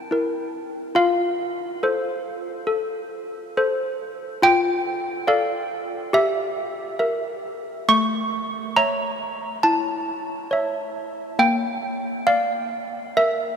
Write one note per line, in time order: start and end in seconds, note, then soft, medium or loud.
0.00 0.91 G5 medium
0.11 0.93 E4 soft
0.11 0.94 A#4 soft
0.95 1.80 F4 medium
0.95 3.95 F5 medium
1.83 2.65 A4 soft
1.83 2.66 C5 soft
2.67 3.56 A4 soft
3.57 4.39 A4 soft
3.57 4.39 C5 medium
4.42 5.26 F4 medium
4.42 5.25 G5 loud
5.27 6.10 A4 soft
5.27 6.10 D5 soft
5.27 6.10 F5 medium
6.13 6.98 G4 medium
6.13 6.98 E5 medium
6.99 7.86 A#4 soft
6.99 7.85 E5 medium
7.88 8.74 A3 medium
7.88 8.73 C#6 loud
8.76 9.61 C#5 soft
8.76 9.61 E5 soft
8.76 9.61 A#5 medium
9.63 11.04 E4 soft
9.63 11.35 A5 medium
10.51 11.35 C#5 soft
10.51 11.36 E5 medium
11.39 12.25 A#3 medium
11.39 12.24 G5 medium
12.27 13.12 D5 soft
12.27 13.12 F5 medium
13.17 13.57 A#4 soft
13.17 13.57 E5 medium